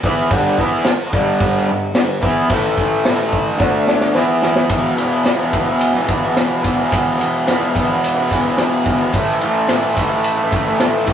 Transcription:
0.03 distorted electric guitar E3 B3 E4, kick
0.31 distorted electric guitar G2 D3 G3, kick, crash
0.58 distorted electric guitar E3 B3 E4, kick
0.85 muted distorted electric guitar stroke, snare, tambourine, crash
1.12 distorted electric guitar G2 D3 G3, kick
1.40 kick, crash
1.68 distorted electric guitar G2 D3
1.94 distorted electric guitar G2 D3, snare, tambourine, crash
2.21 distorted electric guitar E3 B3 E4, kick
2.50 distorted electric guitar A2 E3 A3, kick, crash
2.77 kick
3.05 snare, tambourine, crash
3.33 kick
3.58 distorted electric guitar D3 A3 D4, kick, snare
3.87 snare
4.01 snare
4.13 distorted electric guitar E3 B3 E4, snare, tambourine
4.42 snare
4.56 snare
4.68 distorted electric guitar E2 B2, kick, ride
4.73 distorted electric guitar E3
4.96 distorted electric guitar E2 B2, ride
5.01 distorted electric guitar E3
5.24 distorted electric guitar E2 B2, snare, ride, tambourine
5.29 distorted electric guitar E3
5.38 distorted electric guitar E3
5.43 distorted electric guitar B2
5.52 distorted electric guitar E2 B2, kick, ride
5.57 distorted electric guitar E3
5.65 distorted electric guitar E3
5.70 distorted electric guitar B2
5.81 ride
5.93 distorted electric guitar E3, snare
5.98 distorted electric guitar B2
6.06 distorted electric guitar E2 B2, kick, ride
6.12 distorted electric guitar E3
6.20 distorted electric guitar E3
6.25 distorted electric guitar B2
6.35 distorted electric guitar E2 B2, snare, ride, tambourine
6.40 distorted electric guitar E3
6.62 distorted electric guitar E2 B2, kick, ride
6.67 distorted electric guitar E3
6.77 distorted electric guitar E3
6.81 distorted electric guitar B2
6.91 distorted electric guitar E2 B2, kick, ride
6.96 distorted electric guitar E3
7.19 distorted electric guitar E2 B2, ride
7.24 distorted electric guitar E3
7.46 distorted electric guitar E2 B2, snare, ride, tambourine
7.51 distorted electric guitar E3
7.60 distorted electric guitar E3
7.65 distorted electric guitar B2
7.74 distorted electric guitar E2 B2, kick, ride
7.79 distorted electric guitar E3
7.88 distorted electric guitar E3
7.92 distorted electric guitar B2
8.04 ride
8.14 distorted electric guitar E3
8.20 distorted electric guitar B2
8.29 distorted electric guitar E2 B2, kick, ride
8.34 distorted electric guitar E3
8.43 distorted electric guitar E3
8.47 distorted electric guitar B2
8.57 distorted electric guitar E2 B2, snare, ride, tambourine
8.62 distorted electric guitar E3
8.85 distorted electric guitar E2 B2, kick, ride
8.90 distorted electric guitar E3
8.99 distorted electric guitar E3
9.04 distorted electric guitar B2
9.13 distorted electric guitar A2 E3, kick, ride
9.18 distorted electric guitar A3
9.40 distorted electric guitar A2 E3, ride
9.45 distorted electric guitar A3
9.68 distorted electric guitar A2 E3, snare, ride, tambourine
9.73 distorted electric guitar A3
9.81 distorted electric guitar A3
9.86 distorted electric guitar E3
9.95 distorted electric guitar A2 E3, kick, ride
10.00 distorted electric guitar A3
10.09 distorted electric guitar A3
10.14 distorted electric guitar E3
10.24 ride
10.37 distorted electric guitar A3
10.42 distorted electric guitar E3
10.51 distorted electric guitar A2 E3, kick, ride
10.56 distorted electric guitar A3
10.65 distorted electric guitar A3
10.70 distorted electric guitar E3
10.79 distorted electric guitar A2 E3, snare, ride, tambourine
10.84 distorted electric guitar A3
11.07 distorted electric guitar A2 E3, kick, ride

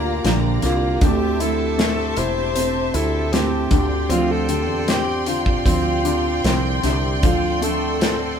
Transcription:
Already playing: fretless electric bass D2, grand piano D3 A#3, steel-string acoustic guitar A#3 D4 G4, alto saxophone F4, string section G4 D5 F5 A#5
0.24 fretless electric bass A#1, grand piano D3, steel-string acoustic guitar D3 F3 A#3 D4 G4, snare, closed hi-hat
0.62 fretless electric bass C2, grand piano A#3, steel-string acoustic guitar A#3 D4 G4, alto saxophone F4, snare, closed hi-hat
1.01 fretless electric bass D2, grand piano D3, steel-string acoustic guitar D3 A3 C4 E4 G4, alto saxophone G4, string section C5 E5 A5, kick, closed hi-hat
1.40 steel-string acoustic guitar D3 A3 C4 E4 G4, grand piano E4, alto saxophone A4, closed hi-hat
1.78 grand piano A3, snare, closed hi-hat
2.17 fretless electric bass E1, steel-string acoustic guitar C4 E4 G4, grand piano E4, alto saxophone C5, closed hi-hat
2.55 steel-string acoustic guitar A3 C4 E4 G4, grand piano C4, closed hi-hat
2.94 fretless electric bass D2, steel-string acoustic guitar C4 E4 G4, grand piano E4, alto saxophone A4, closed hi-hat
3.32 steel-string acoustic guitar D3 A3 C4 E4 G4, grand piano C4, alto saxophone G4, snare, closed hi-hat
3.71 fretless electric bass D2, grand piano D3, steel-string acoustic guitar C4 F4 G4, alto saxophone G4, string section D5 G5 C6, kick, closed hi-hat
4.09 fretless electric bass D2, steel-string acoustic guitar D3 F3 C4 F4 G4, grand piano C4, alto saxophone F4, closed hi-hat
4.31 alto saxophone A4
4.49 grand piano D3, steel-string acoustic guitar D3 C4 F4 G4, closed hi-hat
4.67 fretless electric bass E2
4.87 grand piano C4, alto saxophone G4, snare, closed hi-hat
5.26 grand piano D3, steel-string acoustic guitar C4 F4 G4, alto saxophone F4, closed hi-hat
5.46 kick
5.65 fretless electric bass D2, steel-string acoustic guitar F3 C4 F4 G4, grand piano C4, alto saxophone F4, kick, closed hi-hat
6.04 grand piano D3, steel-string acoustic guitar C4 F4 G4, closed hi-hat
6.44 fretless electric bass C2, steel-string acoustic guitar D3 F3 C4 F4 G4, grand piano C4, snare, closed hi-hat
6.83 fretless electric bass C2, grand piano D3, steel-string acoustic guitar C4 G4, alto saxophone E4, snare, closed hi-hat
7.23 fretless electric bass D2, steel-string acoustic guitar D3 F3 C4 D4 A4, grand piano D3, alto saxophone F4, string section A4, kick, closed hi-hat
7.61 steel-string acoustic guitar D3 F3 C4 D4 A4, grand piano A3, alto saxophone A4, closed hi-hat
8.01 grand piano C4, snare, closed hi-hat

